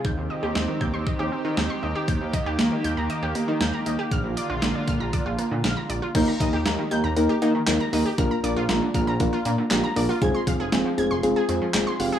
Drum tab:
CC |--------|--------|--------|x-------|
HH |--------|xxxxxxxx|xxxxxxxx|xxxxxxxo|
CP |--------|--------|--------|------x-|
SD |--o---o-|--o---o-|--o---o-|--o---o-|
BD |o--oo---|oo------|o--oo---|oo------|

CC |--------|--------|
HH |xxxxxxxo|xxxxxxxo|
CP |------x-|------x-|
SD |--o---o-|--o---o-|
BD |o--oo---|oo------|